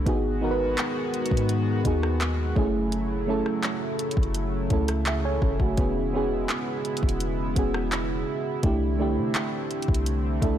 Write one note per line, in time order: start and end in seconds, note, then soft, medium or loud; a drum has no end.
0.06 0.75 G#1 loud
0.06 2.54 D#3 medium
0.06 2.54 G#3 medium
0.06 0.28 B3 medium
0.06 2.54 B3 medium
0.06 0.28 D#4 medium
0.06 2.54 F#4 medium
0.06 0.29 F#4 medium
0.06 0.29 G#4 loud
0.06 kick loud
0.06 closed hi-hat medium
0.41 1.29 B3 medium
0.41 1.30 D#4 medium
0.41 1.30 F#4 medium
0.41 0.50 A#4 medium
0.51 1.34 B4 loud
0.78 clap loud
0.78 closed hi-hat medium
1.14 closed hi-hat soft
1.26 closed hi-hat medium
1.31 1.83 G#2 loud
1.31 kick loud
1.37 closed hi-hat medium
1.49 closed hi-hat medium
1.84 2.54 D#2 loud
1.84 2.50 B3 medium
1.84 2.51 D#4 medium
1.84 2.51 F#4 medium
1.84 2.52 G#4 medium
1.84 kick medium
1.84 closed hi-hat medium
2.03 cross-stick loud
2.21 clap loud
2.21 closed hi-hat medium
2.56 3.42 F#1 loud
2.56 8.59 C#3 medium
2.56 5.74 F#3 medium
2.56 3.13 A3 loud
2.56 5.74 A3 medium
2.56 3.14 C#4 medium
2.56 10.58 E4 medium
2.56 3.14 E4 medium
2.56 3.15 G#4 loud
2.56 kick loud
2.92 closed hi-hat medium
3.27 4.15 A3 medium
3.27 4.15 C#4 medium
3.27 4.16 E4 medium
3.27 4.16 A4 loud
3.46 cross-stick medium
3.63 clap loud
3.63 closed hi-hat medium
3.99 closed hi-hat medium
4.11 closed hi-hat medium
4.17 4.69 F#1 loud
4.17 kick loud
4.23 closed hi-hat soft
4.34 closed hi-hat medium
4.70 5.39 C#2 loud
4.70 5.06 A3 medium
4.70 5.06 C#4 medium
4.70 5.07 E4 medium
4.70 5.08 A4 medium
4.70 kick medium
4.70 closed hi-hat soft
4.88 cross-stick loud
4.88 closed hi-hat medium
5.06 5.24 G#4 medium
5.06 5.23 E5 medium
5.06 clap loud
5.06 closed hi-hat medium
5.25 5.42 E4 medium
5.25 5.42 C#5 medium
5.25 5.74 G#5 medium
5.42 5.59 F#1 loud
5.42 5.60 C#4 medium
5.42 5.60 A4 medium
5.42 kick loud
5.60 5.77 F#1 loud
5.60 5.95 A3 medium
5.60 5.78 F#4 medium
5.60 kick loud
5.77 6.46 E1 loud
5.77 8.60 G#3 medium
5.77 8.60 B3 medium
5.77 5.99 B3 medium
5.77 6.00 C#4 medium
5.77 6.00 F#4 medium
5.77 6.01 G#4 medium
5.77 kick loud
5.77 closed hi-hat medium
6.13 7.01 B3 medium
6.13 7.01 C#4 medium
6.13 7.02 F#4 medium
6.13 7.02 G#4 loud
6.49 clap loud
6.49 closed hi-hat medium
6.85 closed hi-hat soft
6.97 closed hi-hat medium
7.03 7.54 E1 loud
7.03 kick loud
7.09 closed hi-hat medium
7.20 closed hi-hat medium
7.56 8.25 E1 loud
7.56 8.22 B3 medium
7.56 8.22 C#4 medium
7.56 8.23 F#4 medium
7.56 8.23 G#4 medium
7.56 kick medium
7.56 closed hi-hat medium
7.74 cross-stick loud
7.92 clap loud
7.92 closed hi-hat medium
8.63 9.19 C2 loud
8.63 10.58 D3 medium
8.63 8.85 A3 medium
8.63 10.58 A3 medium
8.63 10.58 C4 medium
8.63 8.86 D4 medium
8.63 8.86 E4 medium
8.63 8.87 G4 medium
8.63 kick loud
8.63 closed hi-hat medium
8.99 9.86 A3 loud
8.99 9.87 D4 medium
8.99 9.87 E4 medium
8.99 9.88 G4 loud
9.18 9.34 C3 loud
9.35 clap loud
9.35 closed hi-hat medium
9.71 closed hi-hat soft
9.82 closed hi-hat medium
9.88 10.40 C2 loud
9.88 kick loud
9.94 closed hi-hat medium
10.06 closed hi-hat medium
10.42 10.58 C2 loud
10.42 10.58 A3 medium
10.42 10.58 D4 medium
10.42 10.58 E4 medium
10.42 10.58 A4 medium
10.42 10.58 E5 medium
10.42 kick medium
10.42 closed hi-hat medium